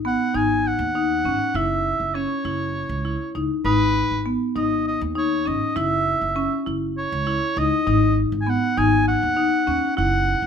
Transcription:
Already playing: upright bass G#1
0.05 marimba B3, oboe F#5
0.34 upright bass G#1, marimba D#4, oboe G#5
0.67 oboe F#5
0.79 upright bass D#2
0.95 marimba D#4
1.25 upright bass G#1, marimba C#4
1.54 upright bass F#1, marimba E4, oboe E5
2.00 upright bass F#1
2.14 marimba C#4, oboe C#5
2.45 upright bass F#1, marimba E4
2.89 upright bass C#2
3.05 marimba E4
3.35 upright bass C#2, marimba D#4
3.64 upright bass G#1, marimba D#4, oboe B4
4.11 upright bass G#1
4.26 marimba B3
4.55 upright bass G#1, marimba D#4, oboe D#5
4.88 oboe D#5
5.01 upright bass D#2
5.16 marimba D#4, oboe C#5
5.45 upright bass G#1, marimba C#4, oboe D#5
5.76 upright bass F#1, marimba E4, oboe E5
6.21 upright bass F#1
6.36 marimba C#4
6.66 upright bass F#1, marimba E4
6.98 oboe C#5
7.12 upright bass C#2
7.27 marimba E4
7.56 upright bass C#2, marimba D#4, oboe D#5
7.87 upright bass G#1, marimba D#4
8.32 upright bass G#1
8.41 oboe G#5
8.47 marimba B3, oboe F#5
8.77 upright bass G#1, marimba D#4, oboe G#5
9.08 oboe F#5
9.23 upright bass D#2
9.37 marimba D#4
9.67 upright bass D#2, marimba C#4
9.97 upright bass F#1, marimba E4, oboe F#5
10.42 upright bass F#1

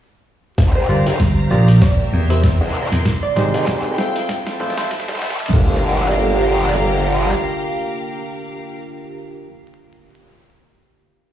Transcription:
0.58 wobble bass G1, ambient pad D3 A#3 F4 G5, string section G4, kick, snare, closed hi-hat
0.69 string section A#5
0.75 synth pluck C5
0.83 string section F5
0.89 slap bass G1, tine electric piano F4 G4 A#4 D5, synth pluck C5
1.06 wobble bass G1, closed hi-hat
1.20 slap bass G1, kick, snare, closed hi-hat
1.51 slap bass A#1, tine electric piano F4 G4 A#4 D5
1.68 closed hi-hat
1.81 ambient pad C3 E4, string section A#4, synth pluck D5, kick, snare, closed hi-hat
1.92 string section E5
2.07 string section C6
2.12 slap bass E2
2.30 tine electric piano E4 G4 A#4 C5, synth pluck E5, closed hi-hat
2.43 synth pluck E5, kick, snare, closed hi-hat
2.61 wobble bass E2
2.92 slap bass E2, closed hi-hat
3.05 ambient pad C4 D#5, kick, snare, closed hi-hat
3.23 synth pluck D5
3.36 slap bass G#1, tine electric piano D#4 G4 G#4 C5, synth pluck D5, snare
3.52 wobble bass G#1, string section G5, closed hi-hat
3.67 kick, snare, closed hi-hat
3.98 tine electric piano E4 F4 A4 C5, snare
4.16 closed hi-hat
4.29 string section F3, ambient pad A3 E4 F4, kick, snare, closed hi-hat
4.42 string section A5
4.47 snare
4.57 slap bass A1, tine electric piano E4 F4 A4 C5, string section E5, snare
4.70 snare
4.77 tine electric piano E4 F4 A4 C5, snare, closed hi-hat
4.81 snare
4.91 kick, snare, closed hi-hat
5.00 snare
5.08 wobble bass A1, snare
5.15 snare
5.22 snare
5.30 snare
5.39 slap bass A1, closed hi-hat
5.46 snare
5.53 wobble bass G1, ambient pad D3 A#3 F4 G4, tine electric piano D4 F4 G4 A#4, string section G4, kick, crash
5.63 string section F5
5.73 string section A#5

